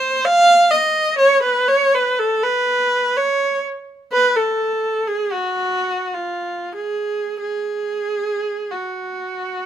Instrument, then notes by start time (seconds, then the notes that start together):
viola
Already playing: C5
0.25 F5
0.71 D#5
1.18 C#5
1.42 B4
1.68 C#5
1.95 B4
2.19 A4
2.43 B4
3.16 C#5
4.12 B4
4.37 A4
5.07 G#4
5.32 F#4
6.13 F4
6.75 G#4
7.40 G#4
8.71 F#4